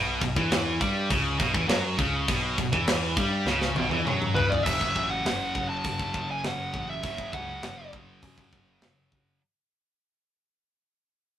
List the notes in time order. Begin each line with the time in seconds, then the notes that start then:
Already playing: B1 B2
0.21 B1 B2, kick, crash
0.36 E2 E3, kick
0.52 snare, crash
0.80 G2 G3, kick, crash
1.09 C#2 C#3, kick, crash
1.39 B1 B2, kick, crash
1.54 E2 E3, kick
1.67 F#2 F#3, snare, crash
1.98 C#2 C#3, kick, crash
2.28 B1 B2, kick, crash
2.58 B1 B2, kick, crash
2.73 E2 E3, kick
2.87 snare, crash
3.16 G2 G3, kick, crash
3.45 C#2 C#3, snare
3.62 snare
3.75 B1 B2, high tom
3.89 E2 E3, high tom
4.05 F#2 F#3, mid tom
4.22 mid tom
4.35 C#2 C#3 B4, floor tom
4.50 D5, floor tom
4.63 F#1 F#2 C#3 E5, kick, crash
4.67 F#3
4.81 kick
4.96 A1, kick
5.10 F#5
5.25 F#1, snare, open hi-hat
5.55 F#1, kick
5.69 A5
5.84 F#1, kick, open hi-hat
5.99 kick
6.14 F#1, kick
6.31 G#5
6.44 F#1 F#5, snare, open hi-hat
6.74 A1, kick
6.90 E5
7.03 F#1 F#2 C#3 F#3, kick, open hi-hat
7.18 kick
7.33 C#2 F#5, kick
7.62 F#1, snare, open hi-hat
7.93 F#1, kick
8.22 F#2, kick, open hi-hat
8.38 kick
8.52 F#1, kick
8.81 F#1, snare, open hi-hat
9.12 F#1, kick